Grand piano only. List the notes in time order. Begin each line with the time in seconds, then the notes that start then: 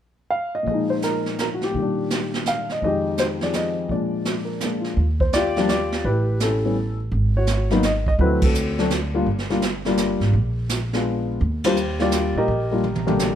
0.30 F5
0.55 D#5
0.63 A#2 F3
0.67 G#3 D#5
0.74 D#4
0.90 C5
1.04 A#4
1.41 A#4
1.54 F#4
1.64 G4
1.71 A#2 D#3
1.79 G3 D4
2.48 F5
2.72 D#5
2.82 F2 D#3 G#3 D#5
2.87 G4
3.19 C5
3.42 F3 C4 G#4 D5
3.56 D#5
3.88 A#2 F3 G#3 D5
3.94 D4
4.45 A#4
4.61 G#3 A#3 D4 G#4
4.81 F4
5.21 C5
5.34 F4 G4 D5
5.57 F3 G3 A#3 D4
5.70 F4 G4 D5
6.05 E4 G4 B4
6.42 C#4 E4 A4
6.65 E3 G3 B3 C#4
7.37 F#4 C#5
7.71 F#3 A#3 B3 D#4
7.85 D#5
8.08 D#5
8.19 F#3 A3 C4 E4 F#4 B4
8.44 C4 F#4 A4
8.79 F#3 A3 C4 D4
9.15 G3 A#3 D4 F4
9.50 G3 A#3 D4 F4
9.86 G3 A#3 D4 F4
10.94 G#3 B3 D4 F4
11.65 G3 A#3 D4 F4 G4 C5
12.00 G3 A#3 D4 F4 G4 D5
12.38 G4 A#4 D#5
12.72 G3 A#3 D4 F4
13.07 D3 G3 A#3 G4